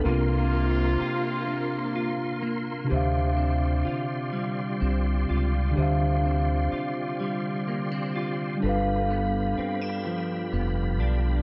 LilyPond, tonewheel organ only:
\new Staff \with { instrumentName = "Tonewheel organ" } { \time 6/8 \key d \minor \tempo 4. = 42 << { <bes' c'''>2. | <d'' c'''>2.~ | <d'' c'''>2. | b''2. | } \\ { f'2. | <f' g'>2.~ | <f' g'>2.~ | <f' g'>2. | } >> }